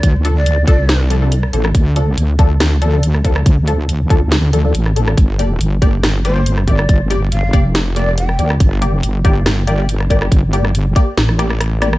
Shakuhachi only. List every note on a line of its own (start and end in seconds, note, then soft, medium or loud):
0.00 0.15 D5 medium
0.36 0.66 D5 loud
0.67 1.00 D5 loud
6.25 6.58 C5 medium
6.68 7.00 D5 medium
6.68 6.72 F5 medium
7.32 7.65 F5 loud
7.96 8.16 D5 loud
8.18 8.50 G5 medium